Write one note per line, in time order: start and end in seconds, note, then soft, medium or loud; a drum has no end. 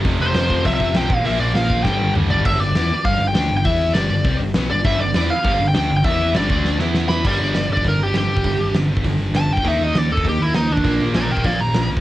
0.04 0.17 F1 loud
0.04 0.34 F2 loud
0.04 0.33 C3 loud
0.04 0.32 F3 loud
0.04 kick loud
0.04 open hi-hat medium
0.20 0.33 F1 loud
0.20 0.66 C5 medium
0.34 0.48 F1 loud
0.34 0.63 F2 medium
0.34 0.64 C3 medium
0.34 0.64 F3 loud
0.34 snare loud
0.34 open hi-hat medium
0.50 0.63 F1 medium
0.50 kick medium
0.65 0.78 C2 medium
0.65 0.93 F2 medium
0.65 0.93 C3 loud
0.65 0.92 F3 loud
0.65 0.73 E5 medium
0.65 kick medium
0.65 open hi-hat medium
0.74 0.97 E5 loud
0.78 0.92 F1 loud
0.78 0.94 C3 medium
0.78 0.94 F3 loud
0.78 kick medium
0.83 0.92 F2 medium
0.93 1.07 B1 medium
0.93 1.09 F2 medium
0.93 1.09 C3 medium
0.93 1.09 F3 medium
0.93 1.10 G5 loud
0.93 snare loud
0.93 open hi-hat medium
1.08 1.22 A#1 loud
1.08 1.83 A#2 loud
1.08 1.85 F3 loud
1.08 1.85 A#3 loud
1.08 1.26 F5 loud
1.08 kick loud
1.24 1.37 A#1 loud
1.24 1.54 A#2 loud
1.24 1.54 F3 loud
1.24 1.53 A#3 loud
1.24 1.40 E5 loud
1.24 open hi-hat medium
1.40 1.52 A#1 medium
1.40 1.56 D5 medium
1.54 1.67 A#1 medium
1.54 1.84 A#2 medium
1.54 1.84 F3 loud
1.54 1.84 A#3 loud
1.54 1.83 F5 medium
1.54 snare loud
1.54 open hi-hat medium
1.70 1.82 A#1 loud
1.70 kick medium
1.83 1.97 G1 medium
1.83 2.15 G2 medium
1.83 2.15 D3 loud
1.83 2.14 G3 loud
1.83 2.12 G5 medium
1.83 kick loud
1.83 snare medium
1.88 2.45 G3 loud
1.99 2.12 G1 medium
1.99 high tom medium
2.15 2.27 D2 medium
2.15 2.44 G2 medium
2.15 2.44 D3 medium
2.15 2.44 G3 loud
2.15 mid tom loud
2.30 2.43 G1 medium
2.30 2.45 D5 medium
2.30 floor tom loud
2.45 2.59 G1 medium
2.45 2.60 G2 loud
2.45 2.60 D3 loud
2.45 2.60 G3 loud
2.45 2.60 E5 loud
2.45 kick loud
2.45 crash loud
2.59 2.74 G1 medium
2.59 2.73 G2 medium
2.59 2.73 D3 medium
2.59 3.05 D5 medium
2.74 2.89 E2 medium
2.74 2.90 E3 loud
2.74 2.90 B3 loud
2.74 2.90 E4 loud
2.74 snare loud
2.74 open hi-hat medium
2.90 muted picked electric bass stroke soft
2.90 muted distorted electric guitar stroke medium
3.04 3.19 G1 loud
3.04 3.18 G2 medium
3.04 3.19 D3 medium
3.04 3.20 G3 medium
3.04 3.26 F5 medium
3.04 kick loud
3.04 open hi-hat medium
3.19 3.34 G1 medium
3.19 3.32 G2 medium
3.19 3.32 D3 medium
3.28 3.56 G5 loud
3.33 3.50 D2 medium
3.33 3.48 D3 loud
3.33 3.49 A3 medium
3.33 3.49 D4 loud
3.33 snare loud
3.33 open hi-hat medium
3.49 3.64 G1 medium
3.49 3.61 G2 medium
3.49 3.61 D3 medium
3.57 3.65 G5 loud
3.64 3.93 E2 loud
3.64 3.94 E3 loud
3.64 3.94 B3 loud
3.64 3.94 E4 loud
3.64 3.95 E5 loud
3.64 kick loud
3.64 open hi-hat medium
3.93 4.09 G1 loud
3.93 4.08 G2 medium
3.93 4.09 D3 loud
3.93 4.09 G3 loud
3.93 4.36 D5 medium
3.93 snare loud
3.93 open hi-hat medium
4.09 4.24 G1 medium
4.09 4.21 G2 medium
4.09 4.22 D3 medium
4.25 4.39 C2 medium
4.25 4.39 C3 medium
4.25 4.40 G3 loud
4.25 4.40 C4 loud
4.25 kick loud
4.25 open hi-hat medium
4.40 4.54 G1 medium
4.40 4.52 G2 medium
4.40 4.52 D3 medium
4.54 4.69 B1 loud
4.54 4.70 B2 loud
4.54 4.70 F#3 loud
4.54 4.70 B3 loud
4.54 snare loud
4.54 open hi-hat medium
4.70 4.84 G1 medium
4.70 4.83 G2 medium
4.70 4.83 D3 medium
4.70 4.86 D5 medium
4.84 4.99 G1 loud
4.84 4.98 G2 loud
4.84 4.98 D3 loud
4.84 5.00 G3 loud
4.84 5.00 E5 loud
4.84 kick loud
4.84 open hi-hat medium
4.99 5.13 G1 medium
4.99 5.12 G2 medium
4.99 5.12 D3 medium
4.99 5.28 D5 medium
5.14 5.29 E2 loud
5.14 5.29 E3 loud
5.14 5.29 B3 loud
5.14 5.29 E4 loud
5.14 snare loud
5.14 open hi-hat medium
5.30 5.68 F5 loud
5.30 muted distorted electric guitar stroke medium
5.30 muted picked electric bass stroke soft
5.44 5.58 G1 loud
5.44 5.58 G2 medium
5.44 5.58 D3 loud
5.44 5.60 G3 loud
5.44 kick loud
5.44 open hi-hat medium
5.59 5.74 G1 medium
5.59 5.71 G2 medium
5.59 5.71 D3 medium
5.68 5.96 G5 loud
5.74 5.89 D2 medium
5.74 5.87 D3 medium
5.74 5.89 A3 loud
5.74 5.89 D4 loud
5.74 snare loud
5.74 open hi-hat medium
5.88 6.04 G1 medium
5.88 6.01 G2 medium
5.88 6.01 D3 medium
5.97 6.04 G5 loud
6.03 6.33 E2 loud
6.03 6.33 E3 loud
6.03 6.34 B3 loud
6.03 6.34 E4 loud
6.03 6.33 E5 loud
6.03 kick loud
6.03 open hi-hat medium
6.33 6.49 G1 loud
6.33 6.48 G2 medium
6.33 6.47 D3 loud
6.33 6.48 G3 loud
6.33 6.77 D5 medium
6.33 snare loud
6.33 open hi-hat medium
6.48 6.78 D2 loud
6.48 6.78 D3 medium
6.48 6.79 A3 loud
6.48 6.79 D4 loud
6.48 kick loud
6.65 snare medium
6.79 7.21 E2 loud
6.79 7.24 E3 loud
6.79 7.24 B3 loud
6.79 7.24 E4 loud
6.79 snare medium
6.94 snare loud
7.08 7.37 B5 loud
7.08 snare loud
7.24 7.39 G1 medium
7.24 7.54 G2 loud
7.24 7.54 D3 loud
7.24 7.54 G3 loud
7.24 7.69 D5 loud
7.24 kick loud
7.24 crash loud
7.40 7.54 G1 medium
7.54 7.69 G1 medium
7.54 7.68 G2 medium
7.54 7.68 D3 medium
7.54 snare loud
7.54 open hi-hat medium
7.67 7.84 G1 loud
7.67 8.43 D3 medium
7.67 8.46 G3 medium
7.71 8.42 G2 medium
7.71 7.86 D5 medium
7.77 kick medium
7.84 7.99 G1 medium
7.84 7.98 G2 medium
7.84 7.98 D3 medium
7.84 8.03 A#4 medium
7.84 kick loud
7.84 open hi-hat medium
7.99 8.14 G1 medium
7.99 8.16 G4 medium
8.14 8.29 G1 medium
8.14 8.28 G2 medium
8.14 8.28 D3 medium
8.14 snare loud
8.14 open hi-hat medium
8.18 8.75 G4 medium
8.30 8.44 G1 medium
8.37 kick medium
8.44 8.58 G1 medium
8.44 8.58 G2 medium
8.44 8.58 D3 medium
8.44 8.88 G3 loud
8.44 kick loud
8.44 open hi-hat medium
8.59 8.73 G1 medium
8.74 8.88 G1 medium
8.74 8.88 G2 medium
8.74 8.88 D3 medium
8.74 snare loud
8.74 open hi-hat medium
8.89 9.03 G1 medium
8.89 9.64 D3 medium
8.89 9.63 G3 medium
8.93 9.65 G2 medium
8.93 kick medium
9.04 9.18 G1 medium
9.04 9.18 G2 medium
9.04 9.19 D3 medium
9.04 kick loud
9.04 open hi-hat medium
9.19 9.32 G1 medium
9.33 9.48 G1 medium
9.33 9.48 G2 medium
9.33 9.49 D3 medium
9.33 9.50 A5 loud
9.33 snare loud
9.33 open hi-hat medium
9.49 9.66 G1 medium
9.49 9.68 G5 medium
9.57 kick medium
9.64 9.79 D#2 medium
9.64 9.94 D#3 loud
9.64 9.94 A#3 loud
9.64 9.95 D#4 loud
9.64 9.83 E5 medium
9.64 kick medium
9.64 open hi-hat medium
9.79 9.94 D#2 medium
9.79 9.98 D#5 medium
9.95 10.09 D#2 medium
9.95 10.08 D#3 medium
9.95 10.09 A#3 medium
9.95 10.11 D5 medium
9.95 snare loud
9.95 open hi-hat medium
10.09 10.24 D#2 medium
10.09 10.84 D#3 medium
10.09 10.85 A#3 medium
10.09 10.84 D#4 medium
10.09 10.26 A4 medium
10.17 kick loud
10.24 10.39 D#2 medium
10.24 10.38 D#3 medium
10.24 10.38 A#3 medium
10.24 kick medium
10.24 open hi-hat medium
10.28 10.41 G4 medium
10.40 10.54 D#2 medium
10.40 10.55 E4 medium
10.54 10.69 D#2 medium
10.54 10.68 D#3 medium
10.54 10.68 A#3 medium
10.54 10.72 D#4 medium
10.54 snare loud
10.54 open hi-hat medium
10.70 10.84 D#2 medium
10.70 11.00 D4 medium
10.77 kick medium
10.84 10.99 A#1 medium
10.84 11.13 A#2 loud
10.84 11.14 F3 loud
10.84 11.14 A#3 loud
10.84 kick loud
10.84 open hi-hat medium
11.01 11.14 A#1 medium
11.14 11.29 A#1 loud
11.14 11.28 A#2 medium
11.14 11.29 F3 medium
11.14 11.30 D5 medium
11.14 11.30 A#5 medium
11.14 snare loud
11.14 open hi-hat medium
11.28 11.44 A#1 medium
11.28 12.01 F3 medium
11.28 12.01 A#3 medium
11.28 11.44 A#4 medium
11.28 11.46 G5 loud
11.32 12.01 A#2 medium
11.37 kick medium
11.44 11.59 A#1 medium
11.44 11.59 A#2 medium
11.44 11.59 F3 medium
11.44 11.60 D5 medium
11.44 11.60 F5 medium
11.44 kick loud
11.44 open hi-hat medium
11.61 11.75 A#1 medium
11.61 11.89 A#5 loud
11.74 11.89 A#1 medium
11.74 11.88 A#2 medium
11.74 11.89 F3 medium
11.74 snare loud
11.74 open hi-hat medium
11.90 12.01 A#1 medium
11.97 kick loud